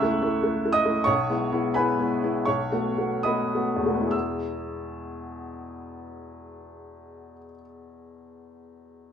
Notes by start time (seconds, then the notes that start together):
Already playing: C#2 E5 C#6 E6
0.02 A3 E4
0.22 A3 E4
0.43 A3 E4
0.65 A3 E4
0.73 D#5 D#6
0.85 A3 E4
1.04 B1 C#5 C#6
1.30 G#3 B3 E4
1.52 G#3 B3 E4
1.74 G#3 B3 E4 B4 G#5 B5
1.99 G#3 B3 E4
2.24 G#3 B3 E4
2.45 B1 C#5 C#6
2.72 A3 B3 F#4
2.98 A3 B3 F#4
3.23 A3 B3 F#4 D#5 B5 D#6
3.55 A3 B3 F#4
3.76 E2
3.83 B2 A3
3.87 G#3 B3 F#4
3.95 B3
4.01 E4
4.07 G#4 E6